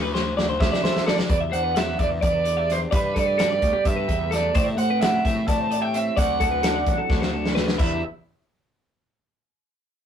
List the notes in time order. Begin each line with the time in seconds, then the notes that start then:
Already playing: D2
0.02 B4
0.14 C5, snare
0.36 D2 D5, snare
0.49 C5
0.60 D2 E5, kick, snare
0.72 D5, snare
0.83 D3 C5, snare
0.96 snare
1.07 A4 D5, snare
1.18 D5, snare
1.29 E2 E4 B4 D5, kick, closed hi-hat
1.41 G4 E5
1.52 E2 D4 C5 F#5, closed hi-hat
1.64 B4
1.75 E4 E5 F#5, snare, closed hi-hat
1.98 E2 E3 D5 E5, kick, closed hi-hat
2.21 E2 E4 D5, kick, closed hi-hat
2.33 B4
2.44 E4 D5, closed hi-hat
2.57 G4 E5
2.69 D4 C5, snare, closed hi-hat
2.91 G2 E4 B4 D5, kick, closed hi-hat
3.15 G2 A3 A4 D5, kick, closed hi-hat
3.26 B4
3.38 B3 A4 D5, snare, closed hi-hat
3.50 D5
3.62 D2 G3, kick, closed hi-hat
3.73 G4
3.85 G2 B3 E5, kick, closed hi-hat
3.96 B4
4.08 E2 E4 G4, kick, closed hi-hat
4.31 A3 A4 D5, snare, closed hi-hat
4.55 A2 G4 C5 D5, kick, closed hi-hat
4.67 E5
4.77 A2 A3 C5 F#5, closed hi-hat
4.90 C4 B4
5.01 E4 E5 F#5, snare, closed hi-hat
5.25 A2 E3 E5, kick, snare, closed hi-hat
5.48 A2 E4 D5 A5, kick, snare, closed hi-hat
5.60 C5
5.71 G4 D5, closed hi-hat
5.82 E5 G5
5.94 C4 E5, closed hi-hat
6.17 D2 D3 F#3 C4 D4 F#4 D5 F#5, kick, closed hi-hat
6.40 D2 C4 A4, kick, closed hi-hat
6.51 B4
6.63 D4 A4, snare, closed hi-hat
6.75 D5
6.86 A1 F#3, kick, closed hi-hat
6.98 A4
7.10 D2 D4, kick, snare
7.21 C5, snare
7.32 D2 F#4 A4
7.46 snare
7.55 A3 B4, snare
7.68 C4, snare
7.78 E2 E3 D4 E4 E5, kick, crash
7.84 G4